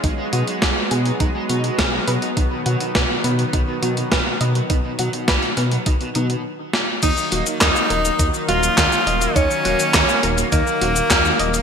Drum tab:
CC |----------------|----------------|----------------|x---------------|
HH |x-xxx-xxx-xxx-xx|x-xxx-xxx-xxx-xx|x-xxxxxxxxxx----|x-xxx-xxx-xxx-xx|
SH |----------------|----------------|----------------|xx-xxx-xxx-xxx-x|
CP |----------------|----------------|----------------|----x-------x---|
SD |----o-------o---|----o-------o---|----o-o-------o-|----o-------o---|
BD |o---o---o---o---|o---o---o---o---|o---o---o-------|o---o---o---o---|

CC |----------------|
HH |x-xxx-xxx-xxx-xx|
SH |xx-xxx-xxx-xxx-x|
CP |----x-------x---|
SD |----o-------o---|
BD |o---o---o---o---|